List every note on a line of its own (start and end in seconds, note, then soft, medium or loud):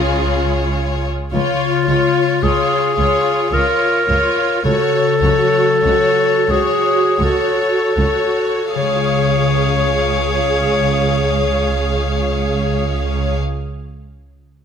0.00 1.11 C#2 soft
0.00 0.79 C#3 soft
0.00 1.28 C#3 soft
0.00 1.87 G#3 soft
0.00 0.79 F4 soft
0.00 1.10 F4 soft
0.00 1.94 F4 soft
0.00 1.11 G#4 soft
0.00 1.06 C#5 soft
0.00 1.99 C#5 soft
1.33 1.41 C#2 soft
1.33 4.63 C#3 soft
1.33 2.44 F4 medium
1.33 1.87 F4 soft
1.33 1.85 C#5 soft
1.33 1.86 C#5 soft
1.87 1.96 C#2 soft
1.87 1.97 C#2 soft
1.87 4.69 G#3 soft
1.87 2.41 F4 soft
1.87 2.41 C#5 soft
1.87 2.42 C#5 soft
2.43 2.51 C#2 soft
2.43 2.52 C#2 soft
2.43 2.97 F4 soft
2.43 4.69 F4 soft
2.43 3.55 G#4 medium
2.43 2.96 C#5 soft
2.43 2.95 C#5 soft
2.96 3.06 C#2 soft
2.96 3.52 F4 soft
2.96 3.50 C#5 soft
3.51 3.61 C#2 soft
3.51 4.07 F4 soft
3.51 4.64 A#4 medium
3.51 4.05 C#5 soft
3.51 4.06 C#5 soft
3.51 4.69 F5 soft
4.06 4.16 C#2 soft
4.06 4.18 C#2 soft
4.06 4.63 F4 soft
4.06 4.69 G#4 soft
4.06 4.62 C#5 soft
4.06 4.63 C#5 soft
4.63 4.72 C#2 soft
4.63 4.73 C#2 soft
4.63 8.54 C#3 soft
4.63 5.21 F#4 soft
4.63 6.52 A4 medium
4.63 5.20 C#5 soft
4.63 5.21 C#5 soft
5.21 5.29 C#2 soft
5.21 5.31 C#2 soft
5.21 8.81 F#3 soft
5.21 5.82 F#4 soft
5.21 5.82 C#5 soft
5.83 5.92 C#2 soft
5.83 5.93 C#2 soft
5.83 6.48 F#4 soft
5.83 7.95 F#4 soft
5.83 6.47 C#5 soft
6.48 6.57 C#2 soft
6.48 6.58 C#2 soft
6.48 7.18 F#4 soft
6.48 7.25 G#4 medium
6.48 9.02 C#5 soft
6.48 7.18 C#5 soft
7.18 7.27 C#2 soft
7.18 7.96 F#4 soft
7.18 7.95 C#5 soft
7.18 7.96 C#5 soft
7.18 8.81 F#5 soft
7.24 8.77 A4 medium
7.96 8.05 C#2 soft
7.96 8.81 F#4 soft
7.96 8.74 F#4 soft
7.96 8.73 C#5 soft
7.96 8.75 C#5 soft
8.75 13.35 C#2 soft
8.75 13.34 C#3 soft
8.75 13.35 G#4 soft
8.75 13.35 C#5 soft
8.75 13.37 C#5 soft
8.75 13.38 F5 soft
8.82 13.41 G#3 soft
8.89 13.48 C#4 soft
8.96 13.55 F4 soft
9.03 13.62 C#5 soft
9.10 13.69 F5 soft